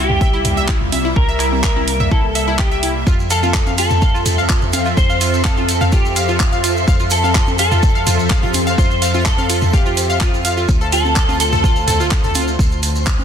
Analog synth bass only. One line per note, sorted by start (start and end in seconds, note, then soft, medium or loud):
0.00 1.14 C2 medium
1.16 3.04 C2 medium
3.07 4.95 F2 medium
4.97 6.85 F2 medium
6.88 8.76 F2 medium
8.78 10.66 F2 medium
10.69 12.57 D2 medium
12.59 13.24 D2 medium